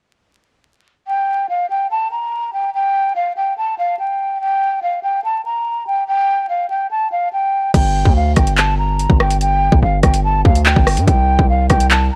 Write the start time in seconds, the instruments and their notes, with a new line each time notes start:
1.08 flute G5
1.49 flute F5
1.70 flute G5
1.91 flute A5
2.11 flute A#5
2.53 flute G5
2.74 flute G5
3.16 flute F5
3.37 flute G5
3.58 flute A5
3.78 flute F5
3.99 flute G5
4.41 flute G5
4.83 flute F5
5.03 flute G5
5.24 flute A5
5.45 flute A#5
5.87 flute G5
6.08 flute G5
6.49 flute F5
6.70 flute G5
6.91 flute A5
7.12 flute F5
7.33 flute G5
7.74 808-style bass G1, flute G5, kick, closed hi-hat, crash
8.05 808-style bass D2, kick
8.16 flute F5
8.36 808-style bass G1, flute G5, kick, cross-stick, closed hi-hat
8.47 closed hi-hat
8.57 flute A5, clap, closed hi-hat
8.78 flute A#5
8.99 closed hi-hat
9.10 808-style bass G1, kick
9.20 flute G5, cross-stick
9.30 closed hi-hat
9.41 flute G5, closed hi-hat
9.72 808-style bass G1, kick
9.82 808-style bass G1, flute F5
10.03 808-style bass G1, flute G5, kick, cross-stick, closed hi-hat
10.14 closed hi-hat
10.24 flute A5
10.45 808-style bass D2, flute F5, kick
10.55 closed hi-hat
10.66 flute G5, clap
10.76 808-style bass G1, kick
10.87 cross-stick, open hi-hat
10.97 808-style bass G2, closed hi-hat
11.07 808-style bass C2, flute G5, kick, closed hi-hat
11.39 808-style bass C2, kick
11.49 flute F5
11.70 808-style bass C2, flute G5, kick, cross-stick, closed hi-hat
11.80 closed hi-hat
11.91 flute A5, clap, closed hi-hat
12.12 flute A#5